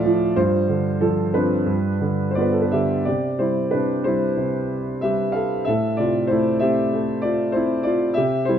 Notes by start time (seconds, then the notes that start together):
Already playing: A2 F3 F4 A4 D5 E5 F5
0.05 F3
0.36 G2 F4 C5
0.69 D3
1.01 F3 A4
1.33 C4 D4 F4 B4
1.66 G2
2.01 D3
2.31 C5
2.35 B3 F4 D5
2.41 B4
2.52 A4
2.62 B4
2.71 D3 G4 E5
3.05 C3 G4 D5
3.39 G3 E4 C5
3.71 C3 D4 B4
4.04 G3 E4 C5
4.37 C3
5.01 G3 G4 E5
5.32 A4 F5
5.65 A2 A4 E5
5.97 C3 F4 D5
6.27 E4 C5
6.31 A3
6.59 C4 G4 E5
6.93 A3
7.22 F4 D5
7.52 C4 E4 C5
7.83 F4 D5
8.14 C3 G4 E5
8.45 G3 E4 C5